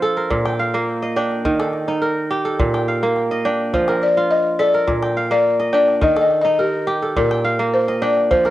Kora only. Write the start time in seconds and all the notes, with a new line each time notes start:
Already playing: F3 D4 F4 C5
0.02 A4
0.17 A#4
0.30 A#2
0.46 G5
0.59 F5
0.74 A#3
1.02 D#5
1.16 D4 G5
1.45 D#3
1.60 A4
1.88 D#4
2.02 A#4
2.31 G4
2.45 A4
2.59 A#2
2.74 G5
2.88 F5
3.03 A#3
3.31 D#5
3.45 D4 G5
3.74 F3
3.89 A#4
4.17 F4
4.59 A4
4.74 A#4
4.87 A#2
5.03 G5
5.17 F5
5.31 A#3
5.60 D#5
5.73 D4 G5
6.01 D#3
6.16 A4
6.45 D#4
6.59 A#4
6.87 G4
7.02 A4
7.17 A#2
7.31 G5
7.45 F5
7.59 A#3
7.88 D#5
8.02 D4 G5
8.31 F3
8.46 A#4